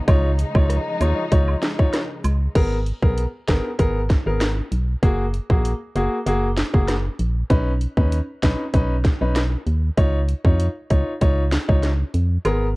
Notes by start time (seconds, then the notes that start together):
Already playing: C#3
0.08 C#2 F3 G#3 D#4 F4 C#5, kick, closed hi-hat, high woodblock
0.39 closed hi-hat, cabasa
0.55 C#2 D#4 F4 C#5, kick, high woodblock
0.70 cross-stick, closed hi-hat
1.00 D#2 D#4 F4 C#5, closed hi-hat, cabasa, high woodblock
1.31 C#2 D#4 F4 C#5, kick, closed hi-hat
1.48 high woodblock
1.62 snare, closed hi-hat, cabasa
1.79 D#4 F4 C#5, kick
1.93 cross-stick, snare, closed hi-hat
2.24 C#2, closed hi-hat, cabasa, high woodblock
2.55 G#1 B3 G#4 A#4, kick, closed hi-hat, crash
2.86 closed hi-hat
3.02 B1 B3 G#4 A#4, kick
3.17 closed hi-hat
3.48 G#1 B3 G#4 A#4, kick, snare, closed hi-hat
3.79 G#1 B3 G#4 A#4, kick, closed hi-hat
4.10 kick, snare, closed hi-hat
4.26 G#1 B3 G#4 A#4
4.41 cross-stick, snare, closed hi-hat
4.72 B1, closed hi-hat
5.03 F#1 A#3 F#4 G#4, kick, closed hi-hat
5.34 closed hi-hat
5.50 A#1 A#3 F#4 G#4, kick
5.65 closed hi-hat
5.95 F#1 A#3 F#4 G#4, closed hi-hat
6.26 F#1 A#3 F#4 G#4, closed hi-hat
6.57 snare, closed hi-hat
6.74 F#1 A#3 F#4 G#4, kick
6.88 cross-stick, snare, closed hi-hat
7.19 A#1, closed hi-hat
7.50 B1 C#4 D#4 B4, kick, closed hi-hat
7.81 closed hi-hat
7.97 D#2 C#4 D#4 B4, kick
8.12 closed hi-hat
8.43 B1 C#4 D#4 B4, kick, snare, closed hi-hat
8.74 B1 C#4 D#4 B4, kick, closed hi-hat
9.05 kick, snare, closed hi-hat
9.21 B1 C#4 D#4 B4
9.36 cross-stick, snare, closed hi-hat
9.67 D#2, closed hi-hat
9.97 C#2 D#4 F4 C#5, kick, closed hi-hat
10.29 closed hi-hat
10.45 F2 D#4 F4 C#5, kick
10.60 closed hi-hat
10.90 C#2 D#4 F4 C#5, kick, closed hi-hat
11.21 C#2 D#4 F4 C#5, kick, closed hi-hat
11.52 snare, closed hi-hat
11.68 C#2 D#4 F4 C#5, kick
11.83 snare, closed hi-hat
12.14 F2, closed hi-hat
12.45 G#1 B3 G#4 A#4, closed hi-hat, high woodblock